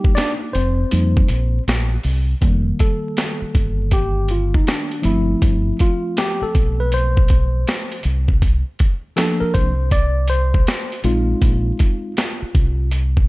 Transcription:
Already playing: tine electric piano G3 A#3 D#4 G4
0.04 kick
0.15 tine electric piano D4 D5, snare, closed hi-hat
0.53 fingered electric bass F1, tine electric piano C4 C5, closed hi-hat
0.91 fingered electric bass F2, tine electric piano G3 A#3 D#4, closed hi-hat
1.17 kick
1.28 fingered electric bass A#1, closed hi-hat
1.67 fingered electric bass A#1, snare, closed hi-hat
2.03 fingered electric bass C2, open hi-hat
2.41 fingered electric bass F1, tine electric piano D#3 G3 A#3, kick, closed hi-hat
2.79 tine electric piano A4, kick, closed hi-hat
3.17 snare, closed hi-hat
3.41 muted fingered electric bass stroke
3.55 fingered electric bass G1, kick, closed hi-hat
3.91 tine electric piano G4, kick, closed hi-hat
4.28 tine electric piano F4, closed hi-hat
4.54 tine electric piano D#4, kick
4.67 tine electric piano D4, snare, closed hi-hat
4.91 closed hi-hat
5.02 fingered electric bass G1, tine electric piano F3 A3 C4 E4, closed hi-hat
5.42 fingered electric bass G1, kick, closed hi-hat
5.79 tine electric piano F4, kick, closed hi-hat
6.17 tine electric piano G4, snare, closed hi-hat
6.42 tine electric piano A4, muted fingered electric bass stroke
6.55 fingered electric bass B1, kick, closed hi-hat
6.80 tine electric piano B4
6.92 tine electric piano C5, closed hi-hat
7.17 kick
7.28 kick, closed hi-hat
7.67 snare, closed hi-hat
7.92 closed hi-hat
8.03 fingered electric bass C2, closed hi-hat
8.28 kick
8.42 kick, closed hi-hat
8.79 kick, closed hi-hat
9.16 tine electric piano F3 A#3 D4 A4, snare, closed hi-hat
9.40 tine electric piano A#4, muted fingered electric bass stroke
9.54 fingered electric bass C2, tine electric piano C5, kick, closed hi-hat
9.91 tine electric piano D5, kick, closed hi-hat
10.28 tine electric piano C5, closed hi-hat
10.54 kick
10.67 snare, closed hi-hat
10.92 closed hi-hat
11.04 fingered electric bass A#1, tine electric piano G#3 C4 D#4 F4, closed hi-hat
11.42 fingered electric bass A#1, kick, closed hi-hat
11.79 kick, closed hi-hat
12.17 snare, closed hi-hat
12.42 muted fingered electric bass stroke
12.55 fingered electric bass C2, kick, closed hi-hat
12.91 closed hi-hat
13.17 kick

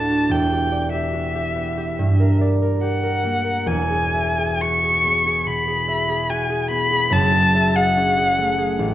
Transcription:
Already playing: harp D2 A2 D4 E4 A4, violin A5
0.11 harp F#4
0.29 harp E1 E2, violin G5
0.51 harp G4
0.72 harp D5
0.92 harp G4, violin E5
1.13 harp F#4
1.35 harp G4
1.56 harp B3
1.77 harp G4
1.99 harp G2
2.20 harp A#4
2.41 harp D5
2.62 harp A#4
2.82 harp G4, violin F#5
3.03 harp A#4
3.24 harp A#3
3.44 harp A#4
3.66 harp E1 E2, violin G#5
3.89 harp G#4
4.14 harp E5
4.38 harp G#4
4.61 harp F#4, violin C#6
4.84 harp G#4
5.04 harp B3
5.26 harp G#4
5.47 harp B2, violin B5
5.67 harp G#4
5.88 harp E5
6.09 harp G#4
6.30 harp F#4, violin G#5
6.50 harp G#4
6.71 harp B3, violin B5
6.91 harp G#4
7.10 harp F#1 F#2, violin A5
7.33 harp G#4
7.55 harp E5
7.75 harp G#4, violin F#5
7.97 harp C#4
8.18 harp G#4
8.38 harp A3
8.58 harp G#4
8.79 harp A1

